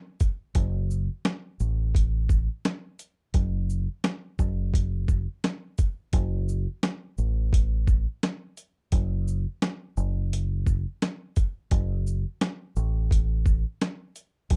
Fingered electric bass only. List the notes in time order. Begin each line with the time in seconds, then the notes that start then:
0.55 F#1
1.60 A1
3.34 F#1
4.39 F#1
6.13 F#1
7.18 A1
8.93 F#1
9.97 F#1
11.72 F#1
12.77 A1
14.51 F#1